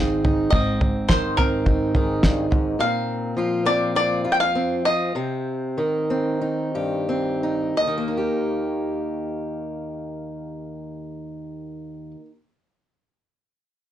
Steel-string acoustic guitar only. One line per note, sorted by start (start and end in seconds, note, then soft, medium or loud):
0.00 0.49 G#2 medium
0.00 0.49 D#3 medium
0.00 0.53 C4 soft
0.00 0.23 D#4 medium
0.00 0.49 G#4 medium
0.24 0.49 D#4 medium
0.52 2.22 G#2 medium
0.52 1.38 C4 medium
1.09 1.94 D#3 medium
1.09 1.66 D#4 medium
1.39 2.79 C4 soft
1.67 2.77 D#4 soft
1.95 2.77 D#3 medium
1.95 2.78 G#4 medium
2.23 2.50 G2 soft
2.51 2.80 G#2 medium
2.79 4.25 A#2 medium
2.79 3.65 C4 soft
3.37 5.11 F3 medium
3.37 3.94 F4 medium
3.65 4.54 C4 soft
3.95 4.23 F4 medium
4.24 5.11 F2 soft
4.24 4.84 F4 soft
4.55 5.12 C4 soft
4.85 5.12 F4 medium
5.15 5.77 C3 medium
5.15 6.09 C4 soft
5.78 7.86 D#3 soft
5.78 6.40 D#4 soft
6.10 7.08 C4 soft
6.41 7.42 D#4 soft
6.75 7.74 G2 soft
6.75 7.75 G4 soft
7.09 7.75 C4 soft
7.43 7.74 D#4 soft
7.77 12.15 D#2 soft
7.87 12.20 D#3 soft
7.98 12.25 A#3 soft
8.08 12.30 D#4 soft
8.18 12.35 G4 soft